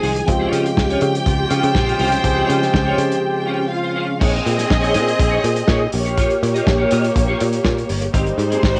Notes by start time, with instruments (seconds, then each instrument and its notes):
Already playing: tine electric piano D#3 F3 G#3 C4 G#4, string section G#4 G#5
0.02 picked electric bass C2, clean electric guitar D#4 G#4 C5, open hi-hat
0.16 muted clean electric guitar stroke, closed hi-hat
0.26 picked electric bass C#2, tine electric piano C#3 F3 G#3 C4 F4, string section G4 G5, muted clean electric guitar stroke, kick, closed hi-hat
0.39 clean electric guitar C#4 F4 C#5
0.50 picked electric bass C#3, clean electric guitar C#4 F4 C5, closed hi-hat
0.64 muted clean electric guitar stroke, closed hi-hat
0.76 picked electric bass C#2, muted clean electric guitar stroke, kick, snare
0.90 clean electric guitar C#4 F4 C#5, closed hi-hat
1.01 picked electric bass C#3, muted clean electric guitar stroke, closed hi-hat
1.14 muted clean electric guitar stroke, closed hi-hat
1.26 picked electric bass C#2, horn section G#3 F4 C5, kick, closed hi-hat
1.39 muted clean electric guitar stroke
1.49 picked electric bass C#3, clean electric guitar C#4 F4 C5, closed hi-hat
1.62 picked electric bass C#3, muted clean electric guitar stroke, closed hi-hat
1.73 picked electric bass A#1, muted clean electric guitar stroke, kick, snare
1.86 clean electric guitar C#4 F4 C5, closed hi-hat
1.98 picked electric bass C2, clean electric guitar C#4 F4 C5, open hi-hat
2.11 muted clean electric guitar stroke, closed hi-hat
2.23 picked electric bass C#2, tine electric piano C#3 F3 G#3 C4 G#4, muted clean electric guitar stroke, kick, closed hi-hat
2.36 clean electric guitar C#4 F4 C#5
2.48 picked electric bass C#3, clean electric guitar C#4 F4 C5, closed hi-hat
2.61 muted clean electric guitar stroke, snare, closed hi-hat
2.73 picked electric bass C#2, muted clean electric guitar stroke, kick, snare
2.86 clean electric guitar C#4 F4 C#5
2.98 picked electric bass C#3, muted clean electric guitar stroke, closed hi-hat
3.10 muted clean electric guitar stroke, closed hi-hat
3.35 muted clean electric guitar stroke
3.46 clean electric guitar C#4 F4 C5
3.59 muted clean electric guitar stroke
3.70 string section F4 F5, muted clean electric guitar stroke
3.83 clean electric guitar C#4 F4 C5
3.94 clean electric guitar C#4 F4 C5
4.09 muted clean electric guitar stroke
4.19 picked electric bass A#1, string section C4 G#4 D#5, clean electric guitar D#4 G#4 C#5, kick, crash
4.33 muted clean electric guitar stroke
4.44 picked electric bass A#2, muted clean electric guitar stroke, closed hi-hat
4.57 clean electric guitar D#4 G#4 D#5, snare, closed hi-hat
4.69 picked electric bass A#1, muted clean electric guitar stroke, kick, snare
4.81 clean electric guitar D#4 G#4 C#5, closed hi-hat
4.94 picked electric bass A#2, clean electric guitar D#4 G#4 D#5, closed hi-hat
5.06 muted clean electric guitar stroke, closed hi-hat
5.18 picked electric bass A#1, muted clean electric guitar stroke, kick, closed hi-hat
5.31 clean electric guitar D#4 G#4 C#5
5.43 picked electric bass A#2, muted clean electric guitar stroke, closed hi-hat
5.55 muted clean electric guitar stroke, closed hi-hat
5.68 picked electric bass A#2, clean electric guitar D#4 G#4 C#5, kick, snare
5.81 muted clean electric guitar stroke
5.92 picked electric bass A#1, string section A#3 G4 C#5, muted clean electric guitar stroke, open hi-hat
6.05 clean electric guitar F4 G4 C#5, closed hi-hat
6.17 clean electric guitar F4 G4 C#5, kick, closed hi-hat
6.30 muted clean electric guitar stroke, closed hi-hat
6.43 picked electric bass A#2, muted clean electric guitar stroke, closed hi-hat
6.54 clean electric guitar F4 G4 D#5, closed hi-hat
6.67 picked electric bass A#1, muted clean electric guitar stroke, kick, snare
6.78 clean electric guitar F4 G4 C#5
6.91 picked electric bass A#2, clean electric guitar F4 G4 D#5, closed hi-hat
7.04 muted clean electric guitar stroke, closed hi-hat
7.16 picked electric bass A#1, muted clean electric guitar stroke, kick, closed hi-hat
7.28 clean electric guitar F4 G4 C#5
7.39 picked electric bass A#2, muted clean electric guitar stroke, closed hi-hat
7.51 muted clean electric guitar stroke, closed hi-hat
7.62 picked electric bass A#2, muted clean electric guitar stroke, kick, snare
7.76 muted clean electric guitar stroke, closed hi-hat
7.89 picked electric bass G1, open hi-hat
8.01 muted clean electric guitar stroke, closed hi-hat
8.13 picked electric bass G#1, string section G3 D#4 C5, clean electric guitar A#3 C4 G4, kick, closed hi-hat
8.26 muted clean electric guitar stroke, closed hi-hat
8.37 picked electric bass G#2, muted clean electric guitar stroke, closed hi-hat
8.50 clean electric guitar A#3 C4 G#4, closed hi-hat
8.61 picked electric bass G#1, muted clean electric guitar stroke, kick, snare
8.74 clean electric guitar A#3 C4 G4, closed hi-hat